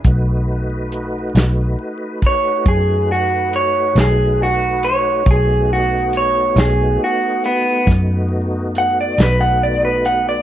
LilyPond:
<<
  \new Staff \with { instrumentName = "Clean electric guitar" } { \time 12/8 \key b \mixolydian \tempo 4. = 46 r2 r8 cis''8 gis'8 fis'8 cis''8 gis'8 fis'8 cis''8 | gis'8 fis'8 cis''8 gis'8 fis'8 b8 r4 fis''16 d''16 b'16 fis''16 d''16 b'16 fis''16 d''16 | }
  \new Staff \with { instrumentName = "Tonewheel organ" } { \time 12/8 \key b \mixolydian <a dis' fis' b'>1. | a1. | }
  \new Staff \with { instrumentName = "Fingered electric bass" } { \clef bass \time 12/8 \key b \mixolydian b,,4. b,,8 r4 fis,4. b,,4. | b,,4. b,,8 r4 fis,4. b,,4. | }
  \new DrumStaff \with { instrumentName = "Drums" } \drummode { \time 12/8 <hh bd>4 hh8 <hh sn>4 <hh bd>8 <hh bd>4 hh8 <hh sn>4 hh8 | <hh bd>4 hh8 <hh sn>4 hh8 <hh bd sn>4 hh8 <hh sn>4 hh8 | }
>>